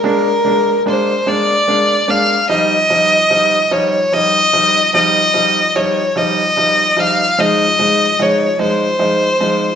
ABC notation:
X:1
M:6/8
L:1/8
Q:3/8=49
K:Ebmix
V:1 name="Fiddle"
B2 c =d2 f | e3 d e2 | e2 d e2 f | e2 d c3 |]
V:2 name="Upright piano" clef=bass
[A,B,=D] [A,B,D] [A,B,D] [A,B,D] [A,B,D] [A,B,D] | [F,G,E] [F,G,E] [F,G,E] [F,G,E] [F,G,E] [F,G,E] | [F,G,E] [F,G,E] [F,G,E] [F,G,E] [F,G,E] [F,G,E] | [F,A,E] [F,A,E] [F,A,E] [F,A,E] [F,A,E] [F,A,E] |]